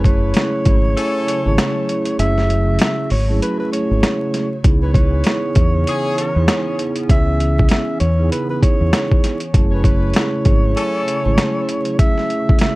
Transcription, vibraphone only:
Already playing: A3 C#4 E4 G#4
0.35 A3 C#4 E4 G#4
1.44 A3 C#4 E4 G#4
1.89 A3 C#4 E4 G#4
2.19 A3 C#4 E4 G#4
3.28 A3 C#4 E4 G#4
3.72 A3 C#4 E4 G#4
4.63 B3 D#4 E4 G#4
5.25 B3 D#4 E4 G#4
6.35 B3 D#4 E4 G#4
6.77 B3 D#4 E4 G#4
7.07 B3 C#4 E4 G#4
8.18 B3 D#4 E4 G#4
8.61 B3 D#4 E4 G#4
9.54 A3 C#4 E4 G#4
10.15 A3 C#4 E4 G#4
11.24 A3 C#4 E4 G#4
11.69 A3 C#4 E4 G#4
11.98 A3 C#4 E4 G#4

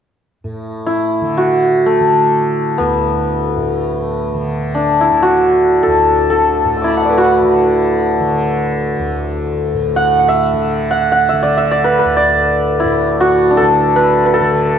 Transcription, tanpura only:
0.44 A2
1.21 D3
2.00 D3
2.80 D2
3.56 A2
4.34 D3
5.11 D3
5.87 D2
6.65 A2
7.42 D3
8.20 D3
8.99 D2
9.74 A2
10.53 D3
11.32 D3
12.05 D2
12.84 A2
13.62 D3
14.41 D3

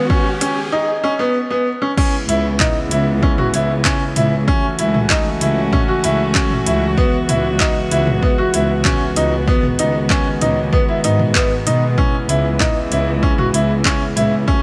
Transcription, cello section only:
2.29 C#2
2.91 C#2
3.53 C#2
4.16 C#2
4.78 C#2
5.41 C#2
6.04 C#2
6.66 C#2
7.29 C#2
7.91 C#2
8.54 C#2
9.16 C#2
9.79 C#2
10.41 C#2
11.04 G#2
11.66 B2
12.29 C#2
12.91 C#2
13.54 C#2
14.16 C#2

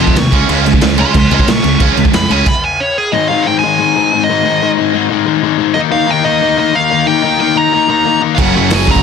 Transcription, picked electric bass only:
0.00 F1
0.15 D#2
0.32 C#2
0.49 C#2
0.82 C#2
1.15 C#2
1.30 C#2
1.48 A#2
1.64 C#2
1.80 C#2
1.97 C#2
2.14 F2
2.31 C#2
8.39 F#1
8.57 F#1
8.73 F#1
8.88 F#1

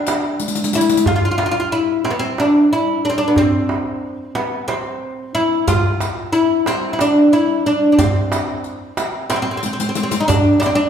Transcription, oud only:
Already playing: D4
0.75 E4
1.07 F4
1.16 F4
1.25 F4
1.31 F4
1.38 F4
1.46 F4
1.51 F4
1.60 F4
1.72 E4
2.05 C4
2.11 B3
2.19 C4
2.40 D4
2.73 E4
3.05 D4
3.10 C4
3.18 D4
3.28 B3
3.38 C4
4.35 B3
4.68 C4
5.35 E4
5.68 F4
6.33 E4
6.67 C4
6.93 E4
7.01 D4
7.33 E4
7.66 D4
7.92 D4
7.99 C4
9.30 C4
9.36 C4
9.42 C4
9.51 C4
9.57 C4
9.66 C4
9.73 C4
9.80 C4
9.89 C4
9.97 C4
10.03 C4
10.11 C4
10.20 D#4
10.28 D4
10.60 D4
10.66 C4
10.75 D4

